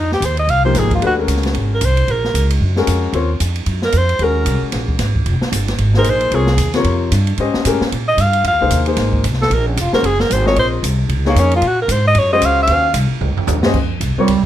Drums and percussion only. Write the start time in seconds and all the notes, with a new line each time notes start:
0.12 snare
0.22 hi-hat pedal, ride
0.37 ride
0.49 ride
0.75 snare, hi-hat pedal, ride
0.91 kick, ride
1.02 ride
1.28 hi-hat pedal, ride
1.36 snare
1.43 snare, ride
1.54 ride
1.81 hi-hat pedal, ride
1.97 ride
2.08 ride
2.24 snare
2.35 hi-hat pedal, ride
2.50 ride
2.76 snare
2.87 hi-hat pedal, ride
3.13 ride
3.40 hi-hat pedal, ride
3.56 ride
3.66 ride
3.82 snare
3.92 hi-hat pedal, ride
4.09 ride
4.19 ride
4.46 hi-hat pedal, ride
4.72 snare, ride
4.88 kick
4.99 snare, hi-hat pedal, ride
5.15 kick
5.26 ride
5.42 snare
5.52 hi-hat pedal, ride
5.68 snare, ride
5.78 ride
5.94 snare
6.04 hi-hat pedal, ride
6.21 ride
6.32 ride
6.47 snare
6.58 hi-hat pedal, ride
6.74 snare, ride
6.84 ride
7.12 hi-hat pedal, ride
7.27 ride
7.38 ride
7.54 snare
7.65 hi-hat pedal, ride
7.81 snare
7.92 ride
8.18 hi-hat pedal, ride
8.33 ride
8.44 ride
8.70 hi-hat pedal, ride
8.86 ride
8.96 snare, ride
9.13 kick
9.24 hi-hat pedal, ride
9.33 snare
9.42 snare
9.51 ride
9.77 hi-hat pedal, ride
9.93 snare
10.04 ride
10.20 snare
10.31 hi-hat pedal, ride
10.47 snare
10.56 ride
10.84 hi-hat pedal, ride
11.09 ride
11.25 snare
11.36 hi-hat pedal, ride
11.51 ride
11.62 ride
11.89 hi-hat pedal, ride
12.15 ride
12.42 hi-hat pedal, ride
12.67 ride
12.94 hi-hat pedal, ride
13.21 floor tom
13.37 floor tom
13.47 floor tom, hi-hat pedal
13.63 snare
13.74 kick, crash
14.01 hi-hat pedal, ride
14.28 ride